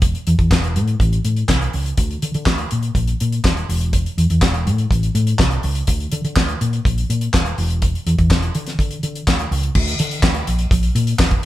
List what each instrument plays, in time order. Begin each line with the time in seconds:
Already playing: fingered electric bass E1
0.02 kick, closed hi-hat
0.15 closed hi-hat
0.27 fingered electric bass E2, closed hi-hat
0.39 fingered electric bass E2, kick, closed hi-hat
0.51 fingered electric bass E1, kick, snare, clap
0.64 closed hi-hat
0.76 fingered electric bass A2, closed hi-hat
0.88 closed hi-hat
1.00 fingered electric bass A1, kick, closed hi-hat
1.13 closed hi-hat
1.25 fingered electric bass A2, closed hi-hat
1.36 closed hi-hat
1.49 fingered electric bass C2, kick, snare, clap
1.61 closed hi-hat
1.73 fingered electric bass C#2, open hi-hat
1.86 closed hi-hat
1.97 fingered electric bass D2, kick, closed hi-hat
2.11 closed hi-hat
2.22 fingered electric bass D3, closed hi-hat
2.34 fingered electric bass D3, closed hi-hat
2.46 fingered electric bass D2, kick, snare, clap
2.58 closed hi-hat
2.71 fingered electric bass A#2, closed hi-hat
2.83 closed hi-hat
2.95 fingered electric bass A#1, kick, closed hi-hat
3.07 closed hi-hat
3.20 fingered electric bass A#2, closed hi-hat
3.32 closed hi-hat
3.44 fingered electric bass D#1, kick, snare, clap
3.57 closed hi-hat
3.69 fingered electric bass E1, open hi-hat
3.81 closed hi-hat
3.93 kick, closed hi-hat
4.06 closed hi-hat
4.18 fingered electric bass E2, closed hi-hat
4.30 fingered electric bass E2, closed hi-hat
4.42 fingered electric bass E1, kick, snare, clap
4.54 closed hi-hat
4.67 fingered electric bass A2, closed hi-hat
4.78 closed hi-hat
4.91 fingered electric bass A1, kick, closed hi-hat
5.03 closed hi-hat
5.15 fingered electric bass A2, closed hi-hat
5.27 closed hi-hat
5.39 fingered electric bass C2, kick, snare, clap
5.51 closed hi-hat
5.63 fingered electric bass C#2, open hi-hat
5.75 closed hi-hat
5.87 fingered electric bass D2, kick, closed hi-hat
6.00 closed hi-hat
6.12 fingered electric bass D3, closed hi-hat
6.25 fingered electric bass D3, closed hi-hat
6.36 fingered electric bass D2, kick, snare, clap
6.49 closed hi-hat
6.61 fingered electric bass A#2, closed hi-hat
6.73 closed hi-hat
6.85 fingered electric bass A#1, kick, closed hi-hat
6.98 closed hi-hat
7.10 fingered electric bass A#2, closed hi-hat
7.21 closed hi-hat
7.34 fingered electric bass D#1, kick, snare, clap
7.46 closed hi-hat
7.58 fingered electric bass E1, open hi-hat
7.70 closed hi-hat
7.82 kick, closed hi-hat
7.95 closed hi-hat
8.06 fingered electric bass E2, closed hi-hat
8.18 fingered electric bass E2, kick, closed hi-hat
8.30 fingered electric bass E1, kick, snare, clap
8.42 closed hi-hat
8.55 fingered electric bass D3, closed hi-hat
8.67 snare, closed hi-hat
8.79 fingered electric bass D3, kick, closed hi-hat
8.91 closed hi-hat
9.03 fingered electric bass D3, closed hi-hat
9.15 closed hi-hat
9.27 fingered electric bass D2, kick, snare, clap
9.39 closed hi-hat
9.51 fingered electric bass C#2, open hi-hat
9.63 closed hi-hat
9.75 fingered electric bass D2, kick, crash
9.88 closed hi-hat
9.99 fingered electric bass D3, closed hi-hat
10.11 closed hi-hat
10.23 fingered electric bass D2, kick, snare, clap
10.35 closed hi-hat
10.47 fingered electric bass A#1, closed hi-hat
10.59 closed hi-hat
10.71 fingered electric bass A#1, kick, closed hi-hat
10.83 closed hi-hat
10.95 fingered electric bass A#2, closed hi-hat
11.07 closed hi-hat
11.19 fingered electric bass D#1, kick, snare, clap
11.31 kick, closed hi-hat